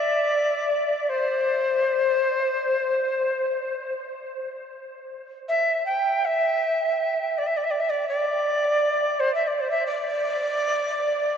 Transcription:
0.00 1.11 D5 medium
1.09 3.95 C5 medium
5.48 5.84 E5 medium
5.86 6.27 G5 medium
6.25 7.40 E5 medium
7.38 7.48 D5 medium
7.46 7.58 E5 medium
7.57 7.65 D5 medium
7.64 7.72 E5 medium
7.70 7.81 D5 medium
7.80 7.91 E5 medium
7.89 8.08 D5 medium
8.09 9.21 D5 medium
9.20 9.34 C5 medium
9.35 9.49 E5 medium
9.47 9.62 D5 medium
9.61 9.70 C5 medium
9.71 9.83 E5 medium
9.86 11.37 D5 medium

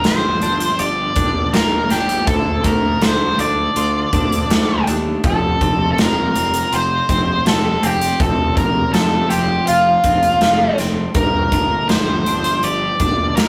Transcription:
0.00 1.17 G2 medium
0.00 1.54 D3 medium
0.04 0.33 G1 medium
0.04 2.27 F3 medium
0.04 0.76 C5 medium
0.04 snare medium
0.04 closed hi-hat medium
0.42 0.70 G1 medium
0.42 1.15 D4 medium
0.42 closed hi-hat soft
0.60 closed hi-hat medium
0.79 1.07 G1 medium
0.79 2.28 G4 medium
0.79 1.56 D5 medium
0.79 closed hi-hat medium
1.16 1.44 G1 medium
1.16 1.89 D4 medium
1.16 kick medium
1.16 closed hi-hat medium
1.53 1.81 G1 medium
1.53 2.28 A#3 medium
1.53 1.91 A#4 medium
1.53 snare medium
1.53 closed hi-hat soft
1.90 2.19 G1 medium
1.90 2.28 D4 soft
1.90 2.27 G4 medium
1.90 snare soft
1.90 closed hi-hat medium
2.09 closed hi-hat soft
2.27 2.55 D2 medium
2.27 3.01 D3 medium
2.27 2.65 A4 medium
2.27 kick medium
2.27 closed hi-hat soft
2.64 2.92 D2 medium
2.64 4.50 A3 medium
2.64 3.03 A#4 medium
2.64 kick medium
2.64 closed hi-hat medium
3.02 3.29 D2 medium
3.02 4.87 D3 medium
3.02 3.40 C5 medium
3.02 snare medium
3.02 closed hi-hat soft
3.39 3.66 D2 medium
3.39 4.12 D4 medium
3.39 4.84 D5 medium
3.39 closed hi-hat medium
3.76 4.04 D2 medium
3.76 6.72 F4 medium
3.76 closed hi-hat soft
4.13 4.40 D2 medium
4.13 4.86 D4 medium
4.13 kick medium
4.13 closed hi-hat soft
4.32 closed hi-hat soft
4.50 4.78 D2 medium
4.50 8.00 A3 medium
4.50 snare medium
4.50 closed hi-hat soft
4.87 5.14 D#2 medium
4.87 5.24 D4 medium
4.87 closed hi-hat medium
5.24 5.51 F1 medium
5.24 7.09 F2 medium
5.24 5.91 A4 medium
5.24 kick loud
5.24 closed hi-hat soft
5.61 5.88 F1 medium
5.61 7.46 C3 medium
5.61 kick medium
5.61 closed hi-hat soft
5.92 5.98 A4 medium
5.98 6.26 F1 medium
5.98 8.94 F3 medium
5.98 6.75 A#4 medium
5.98 snare medium
5.98 closed hi-hat soft
6.36 6.63 F1 medium
6.36 7.09 C4 medium
6.36 closed hi-hat soft
6.54 closed hi-hat medium
6.72 7.00 F1 medium
6.72 9.68 F4 medium
6.72 7.47 C5 medium
6.72 closed hi-hat medium
7.09 7.36 F1 medium
7.09 7.82 C4 medium
7.09 kick medium
7.09 closed hi-hat medium
7.46 7.74 F1 medium
7.46 7.85 A4 medium
7.46 snare medium
7.46 closed hi-hat soft
7.83 8.11 F1 medium
7.83 9.30 C4 medium
7.83 8.21 G4 medium
7.83 closed hi-hat medium
8.01 closed hi-hat soft
8.20 8.47 F1 medium
8.20 10.05 F2 medium
8.20 8.57 A4 medium
8.20 kick loud
8.20 closed hi-hat soft
8.57 8.84 F1 medium
8.57 10.42 C3 medium
8.57 8.91 A#4 medium
8.57 kick medium
8.57 closed hi-hat medium
8.93 9.22 F1 medium
8.93 11.19 F3 medium
8.93 9.28 A4 medium
8.93 snare medium
8.93 closed hi-hat soft
9.30 9.58 F1 medium
9.30 10.05 C4 medium
9.30 9.67 G4 medium
9.30 closed hi-hat medium
9.67 9.95 F1 medium
9.67 10.74 F4 medium
9.67 11.19 F4 medium
9.67 closed hi-hat soft
10.04 10.32 F1 medium
10.04 10.78 C4 medium
10.04 kick medium
10.04 closed hi-hat soft
10.23 closed hi-hat soft
10.41 10.69 F1 medium
10.41 11.16 A3 medium
10.41 snare medium
10.41 closed hi-hat soft
10.78 11.06 F1 medium
10.78 11.16 C4 medium
10.78 snare soft
10.78 closed hi-hat medium
11.15 11.42 G1 medium
11.15 13.00 G2 medium
11.15 11.89 A#4 medium
11.15 kick medium
11.15 closed hi-hat soft
11.52 11.80 G1 medium
11.52 13.37 D3 medium
11.52 kick medium
11.52 closed hi-hat soft
11.89 12.17 G1 medium
11.89 13.48 F3 medium
11.89 12.65 C5 medium
11.89 snare medium
11.89 closed hi-hat soft
12.26 12.54 G1 medium
12.26 13.00 D4 medium
12.26 closed hi-hat soft
12.44 closed hi-hat medium
12.63 12.90 G1 medium
12.63 13.48 G4 medium
12.63 13.39 D5 medium
12.63 closed hi-hat soft
13.00 13.27 G1 medium
13.00 13.48 D4 medium
13.00 kick medium
13.00 closed hi-hat soft
13.36 13.48 G1 medium
13.36 13.48 A#3 medium
13.36 13.48 A#4 medium
13.36 snare medium
13.36 closed hi-hat soft

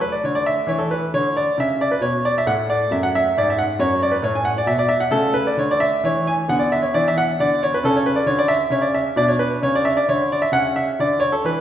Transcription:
0.00 0.13 F#3 soft
0.00 2.44 A3 soft
0.00 0.12 B4 medium
0.12 0.23 D5 medium
0.24 0.59 D3 soft
0.24 0.35 C#5 medium
0.35 0.46 D5 medium
0.46 0.68 E5 medium
0.67 1.03 E3 soft
0.67 0.79 C#5 medium
0.78 0.90 A4 medium
0.91 1.10 B4 medium
1.14 1.49 D3 medium
1.14 1.33 C#5 medium
1.37 1.55 D5 medium
1.58 1.94 C#3 soft
1.58 1.78 E5 medium
1.81 1.92 D5 medium
1.92 2.03 B4 medium
2.01 2.37 B2 soft
2.01 2.25 C#5 medium
2.25 2.36 D5 medium
2.38 2.48 E5 medium
2.46 2.82 A2 soft
2.46 5.09 A3 soft
2.46 2.66 F#5 medium
2.70 2.89 D5 medium
2.91 3.27 F#2 soft
2.91 3.03 E5 medium
3.03 3.14 F#5 medium
3.15 3.37 E5 medium
3.37 3.73 G#2 soft
3.37 3.49 D5 medium
3.50 3.60 E5 medium
3.59 3.78 F#5 medium
3.79 4.15 F#2 medium
3.79 3.99 C#5 medium
4.03 4.14 D5 medium
4.12 4.24 B4 medium
4.22 4.59 A2 medium
4.22 4.36 C#5 medium
4.35 4.47 G#5 medium
4.45 4.57 F#5 medium
4.58 4.69 D5 medium
4.66 5.04 B2 medium
4.66 4.80 E5 medium
4.79 4.91 D5 medium
4.89 5.02 E5 medium
5.00 5.13 F#5 medium
5.11 5.49 C#3 medium
5.11 6.44 A3 soft
5.11 5.32 A4 medium
5.34 5.47 B4 medium
5.47 5.59 D5 medium
5.57 5.94 D3 medium
5.57 5.71 C#5 medium
5.71 5.82 D5 medium
5.80 6.04 E5 medium
6.04 6.40 E3 medium
6.04 6.24 C#5 medium
6.27 6.50 G#5 medium
6.48 6.85 D3 medium
6.48 7.80 B3 soft
6.48 6.61 F#5 medium
6.59 6.71 D5 medium
6.72 6.83 E5 medium
6.82 6.94 C#5 medium
6.94 7.30 E3 medium
6.94 7.06 D5 medium
7.08 7.18 E5 medium
7.18 7.40 F#5 medium
7.40 7.76 D3 soft
7.40 7.62 D5 medium
7.63 7.74 C#5 medium
7.74 7.85 B4 medium
7.83 8.19 C#3 medium
7.83 9.13 C#4 soft
7.83 7.96 A4 medium
7.96 8.07 C#5 medium
8.06 8.17 B4 medium
8.16 8.28 D5 medium
8.26 8.63 D3 medium
8.26 8.39 C#5 medium
8.39 8.50 D5 medium
8.48 8.72 E5 loud
8.70 9.07 C#3 soft
8.70 8.84 C#5 medium
8.82 8.94 D5 medium
8.95 9.17 E5 medium
9.16 9.52 B2 medium
9.16 10.48 D4 soft
9.16 9.29 D5 medium
9.28 9.40 C#5 medium
9.39 9.59 B4 medium
9.62 9.99 C#3 medium
9.62 9.74 C#5 medium
9.75 9.86 D5 medium
9.85 9.96 E5 medium
9.97 10.08 D5 medium
10.08 10.44 D3 medium
10.08 10.28 C#5 medium
10.32 10.42 D5 medium
10.42 10.53 E5 medium
10.52 10.88 C#3 medium
10.52 11.61 C#4 soft
10.52 10.72 F#5 loud
10.76 10.95 E5 medium
10.99 11.35 D3 medium
10.99 11.21 D5 medium
11.20 11.31 C#5 medium
11.32 11.43 A4 medium
11.44 11.61 E3 soft
11.44 11.61 B4 medium

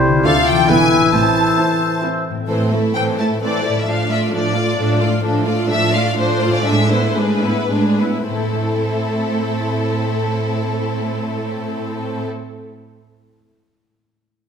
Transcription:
0.00 0.17 C2 medium
0.00 0.17 C3 medium
0.00 0.18 C3 medium
0.00 0.27 G3 medium
0.00 0.15 E4 medium
0.00 0.20 E4 soft
0.00 0.27 E4 medium
0.00 0.15 G4 medium
0.00 0.23 G4 soft
0.00 0.25 G4 medium
0.00 0.25 C5 medium
0.00 0.25 C5 soft
0.00 0.25 C6 soft
0.07 0.61 D3 soft
0.12 0.64 D4 soft
0.16 0.66 F4 soft
0.21 0.68 A4 soft
0.21 0.45 F5 medium
0.25 0.60 D2 medium
0.25 0.59 D3 medium
0.25 0.70 A3 medium
0.25 0.58 D4 medium
0.25 0.70 F4 medium
0.25 0.68 F4 medium
0.25 0.58 F4 medium
0.25 0.70 A4 soft
0.25 0.45 F5 medium
0.25 0.69 D6 soft
0.46 0.68 G5 medium
0.51 1.06 E3 soft
0.56 1.08 B3 soft
0.60 1.03 E4 soft
0.65 2.25 E3 soft
0.65 1.13 E4 soft
0.65 2.25 E4 soft
0.65 1.07 E5 soft
0.65 1.13 G#5 medium
0.65 1.12 G#5 medium
0.69 1.03 E1 medium
0.69 1.03 E2 soft
0.69 1.01 B3 soft
0.69 1.01 E4 soft
0.69 1.12 B4 soft
0.69 2.23 E6 medium
0.95 2.29 A2 soft
0.99 2.34 C4 soft
1.04 2.39 E4 soft
1.08 2.43 E5 soft
1.13 1.49 A1 medium
1.13 1.49 A2 soft
1.13 2.26 C4 soft
1.13 2.23 C5 soft
1.13 2.03 A5 medium
1.13 2.01 A5 soft
1.59 1.92 C4 soft
1.59 1.92 E4 soft
2.03 2.37 C4 soft
2.03 2.37 E4 soft
2.30 3.68 A2 soft
2.35 3.83 C4 soft
2.40 3.85 E4 soft
2.44 3.87 E5 soft
2.48 2.90 A2 soft
2.48 2.70 E3 soft
2.48 2.70 C4 soft
2.48 2.70 A4 soft
2.48 2.70 C5 soft
2.71 2.95 A3 soft
2.71 2.95 E4 soft
2.71 2.94 A4 soft
2.95 3.36 A2 soft
2.95 3.18 E3 soft
2.95 3.18 C4 soft
2.95 3.18 A4 soft
2.95 3.19 C5 soft
2.95 3.03 G5 medium
3.18 3.42 A3 soft
3.18 3.42 E4 soft
3.18 3.41 A4 soft
3.18 3.27 A5 soft
3.42 3.83 A2 soft
3.42 3.64 E3 soft
3.42 3.64 C4 soft
3.42 3.64 A4 soft
3.42 3.64 C5 soft
3.42 3.76 D5 soft
3.65 3.88 A3 soft
3.65 3.88 E4 soft
3.65 3.87 A4 soft
3.69 5.04 A2 soft
3.74 5.08 A3 soft
3.74 3.89 E5 soft
3.79 5.13 F4 soft
3.83 5.17 D5 soft
3.87 4.28 A2 soft
3.87 4.08 F3 soft
3.87 4.09 D4 soft
3.87 4.09 A4 soft
3.87 4.11 F5 medium
4.10 4.33 A3 soft
4.10 4.33 F4 soft
4.10 4.33 D5 soft
4.10 4.19 E5 medium
4.32 4.73 A2 soft
4.32 4.56 F3 soft
4.32 4.55 D4 soft
4.32 4.55 A4 soft
4.32 4.99 D5 soft
4.55 4.78 A3 soft
4.55 4.78 F4 soft
4.55 4.78 D5 soft
4.78 5.18 A2 soft
4.78 4.99 F3 soft
4.78 4.99 D4 soft
4.78 4.99 A4 soft
5.00 5.23 A3 soft
5.00 5.23 F4 soft
5.00 5.23 D5 soft
5.05 6.46 A2 soft
5.10 6.60 A3 soft
5.14 6.62 F4 soft
5.18 6.60 D5 soft
5.23 5.63 A2 soft
5.23 5.44 F3 soft
5.23 5.44 D4 soft
5.23 5.45 D4 soft
5.23 5.44 A4 soft
5.46 5.69 A3 soft
5.46 5.69 F4 soft
5.46 5.69 D5 soft
5.68 6.11 A2 medium
5.68 5.93 F3 soft
5.68 5.93 D4 soft
5.68 5.93 A4 soft
5.68 5.91 E5 medium
5.93 6.17 A3 soft
5.93 6.17 F4 soft
5.93 6.17 D5 soft
5.93 6.16 F5 medium
6.16 6.59 A2 soft
6.16 6.40 F3 soft
6.16 6.39 D4 soft
6.16 6.40 D4 soft
6.16 6.39 A4 soft
6.16 6.52 C5 medium
6.41 6.65 A3 soft
6.41 6.65 F4 soft
6.41 6.66 F4 soft
6.41 6.66 D5 soft
6.48 8.23 A2 soft
6.52 8.25 G#3 soft
6.52 6.66 D5 soft
6.57 8.42 E4 soft
6.61 7.10 A2 soft
6.61 8.29 D5 soft
6.65 6.89 G#3 soft
6.65 6.89 D4 soft
6.65 6.89 G#4 soft
6.65 6.90 E5 medium
6.91 7.17 B3 soft
6.91 7.17 E4 soft
6.91 7.17 B4 soft
6.91 7.16 C5 medium
7.16 7.65 A2 soft
7.16 7.44 G#3 soft
7.16 7.44 D4 soft
7.16 7.44 G#4 soft
7.16 8.01 B4 soft
7.43 7.71 B3 soft
7.43 7.71 E4 soft
7.43 7.72 E4 soft
7.43 7.72 B4 soft
7.71 8.23 A2 soft
7.71 7.99 G#3 soft
7.71 7.99 D4 soft
7.71 7.99 G#4 soft
8.01 8.30 B3 soft
8.01 8.27 E4 soft
8.01 8.30 E4 soft
8.01 8.29 B4 soft
8.28 12.27 A2 soft
8.28 12.97 A2 soft
8.28 12.28 A3 soft
8.28 12.28 C4 soft
8.28 12.27 E4 soft
8.28 12.27 A4 soft
8.36 13.01 A3 soft
8.43 13.04 E4 soft
8.50 13.08 C5 soft
8.57 13.11 E5 soft

